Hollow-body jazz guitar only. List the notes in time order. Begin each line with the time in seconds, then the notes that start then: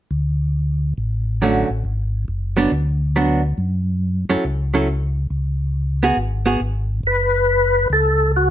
1.42 D3 F#3 A3 C#4
2.57 F#3 B3 D4
3.16 F#3 B3 D4
4.30 F#3 C#4 E4 A4
4.74 F#3 C#4 E4 A4
6.03 B3 F#4 G#4
6.46 B3 F#4 G#4